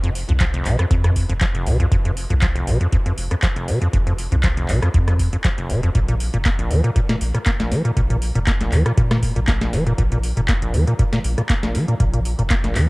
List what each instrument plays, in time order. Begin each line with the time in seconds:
Already playing: analog synth bass F1
0.03 acid bass F2, closed hi-hat
0.15 open hi-hat
0.29 analog synth bass C2, acid bass F2, closed hi-hat
0.40 acid bass F3, kick, clap, closed hi-hat
0.54 acid bass F1, closed hi-hat
0.65 analog synth bass A#1, acid bass C3, clap, open hi-hat
0.79 acid bass F2, cross-stick, closed hi-hat
0.91 analog synth bass F2, acid bass F2, kick, closed hi-hat
1.04 acid bass F2, cross-stick, closed hi-hat
1.16 kick, open hi-hat
1.29 analog synth bass F1, acid bass F2, closed hi-hat
1.41 acid bass F3, kick, clap, closed hi-hat
1.55 acid bass F1, closed hi-hat
1.66 analog synth bass C2, acid bass C3, open hi-hat
1.80 acid bass F2, closed hi-hat
1.92 analog synth bass F1, acid bass F2, kick, closed hi-hat
2.05 acid bass F2, closed hi-hat
2.17 open hi-hat
2.30 analog synth bass C2, acid bass F2, closed hi-hat
2.42 acid bass F3, kick, clap, closed hi-hat
2.56 acid bass F1, closed hi-hat
2.67 analog synth bass A#1, acid bass C3, open hi-hat
2.81 acid bass F2, closed hi-hat
2.92 acid bass F2, kick, closed hi-hat
3.06 acid bass F2, closed hi-hat
3.18 analog synth bass F1, open hi-hat
3.31 acid bass F2, cross-stick, closed hi-hat
3.42 acid bass F3, kick, clap, closed hi-hat
3.56 acid bass F1, closed hi-hat
3.68 acid bass C3, open hi-hat
3.82 acid bass F2, closed hi-hat
3.93 analog synth bass F1, acid bass F2, kick, closed hi-hat
4.07 acid bass F2, closed hi-hat
4.18 open hi-hat
4.32 analog synth bass C2, acid bass F2, closed hi-hat
4.43 acid bass F3, kick, clap, closed hi-hat
4.57 acid bass F1, closed hi-hat
4.68 analog synth bass A#1, acid bass C3, clap, open hi-hat
4.82 acid bass F2, cross-stick, closed hi-hat
4.94 acid bass F2, analog synth bass F2, kick, closed hi-hat
5.08 acid bass F2, cross-stick, closed hi-hat
5.19 kick, open hi-hat
5.33 acid bass F2, closed hi-hat
5.44 acid bass F3, kick, clap, closed hi-hat
5.58 acid bass F1, closed hi-hat
5.70 analog synth bass D#1, acid bass C3, open hi-hat
5.83 acid bass F2, closed hi-hat
5.95 analog synth bass A#1, acid bass A#2, kick, closed hi-hat
6.08 acid bass A#2, closed hi-hat
6.20 open hi-hat
6.34 analog synth bass F1, acid bass A#2, closed hi-hat
6.45 acid bass A#3, kick, clap, closed hi-hat
6.59 acid bass A#1, closed hi-hat
6.71 analog synth bass D#2, acid bass F3, open hi-hat
6.84 acid bass A#2, closed hi-hat
6.96 acid bass A#2, kick, closed hi-hat
7.09 acid bass A#2, snare, closed hi-hat
7.21 analog synth bass A#1, open hi-hat
7.35 acid bass A#2, cross-stick, closed hi-hat
7.46 acid bass A#3, kick, clap, closed hi-hat
7.60 acid bass A#1, snare, closed hi-hat
7.71 acid bass F3, snare, open hi-hat
7.85 acid bass A#2, closed hi-hat
7.97 analog synth bass A#1, acid bass A#2, kick, closed hi-hat
8.10 acid bass A#2, closed hi-hat
8.22 open hi-hat
8.35 analog synth bass F1, acid bass A#2, closed hi-hat
8.47 acid bass A#3, kick, clap, closed hi-hat
8.61 acid bass A#1, snare, closed hi-hat
8.72 analog synth bass D#2, acid bass F3, clap, open hi-hat
8.86 acid bass A#2, cross-stick, closed hi-hat
8.97 analog synth bass A#2, acid bass A#2, kick, closed hi-hat
9.11 acid bass A#2, cross-stick, snare, closed hi-hat
9.23 kick, open hi-hat
9.36 analog synth bass A#1, acid bass A#2, closed hi-hat
9.48 acid bass A#3, kick, snare, clap, closed hi-hat
9.61 acid bass A#1, snare, closed hi-hat
9.73 analog synth bass F1, acid bass F3, snare, open hi-hat
9.87 acid bass A#2, closed hi-hat
9.98 analog synth bass A#1, acid bass A#2, kick, closed hi-hat
10.12 acid bass A#2, closed hi-hat
10.24 open hi-hat
10.37 analog synth bass F1, acid bass A#2, closed hi-hat
10.48 acid bass A#3, kick, clap, closed hi-hat
10.62 acid bass A#1, closed hi-hat
10.74 analog synth bass D#2, acid bass F3, open hi-hat
10.88 acid bass A#2, closed hi-hat
10.99 acid bass A#2, kick, closed hi-hat
11.13 acid bass A#2, snare, closed hi-hat
11.24 analog synth bass A#1, open hi-hat
11.38 acid bass A#2, cross-stick, closed hi-hat
11.49 acid bass A#3, kick, clap, closed hi-hat
11.63 acid bass A#1, snare, closed hi-hat
11.75 acid bass F3, snare, open hi-hat
11.88 acid bass A#2, closed hi-hat
12.00 analog synth bass A#1, acid bass A#2, kick, closed hi-hat
12.14 acid bass A#2, closed hi-hat
12.25 open hi-hat
12.39 analog synth bass F1, acid bass A#2, closed hi-hat
12.50 acid bass A#3, kick, clap, closed hi-hat
12.64 acid bass A#1, snare, closed hi-hat
12.75 analog synth bass D#2, acid bass F3, clap, open hi-hat